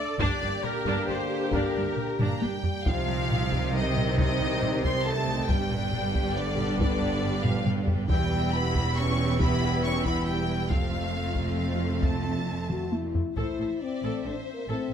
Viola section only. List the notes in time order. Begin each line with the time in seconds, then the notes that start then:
Already playing: A4
0.20 D4 G4
0.42 D4
0.87 D4
1.09 D4
1.54 D4
1.75 D4
2.20 D4
2.43 D4
2.87 G3 D#4
5.50 G3 D4
8.10 G3 E4
10.71 A3 C4
13.37 A4
13.60 A4
14.03 A4
14.25 A4
14.69 A4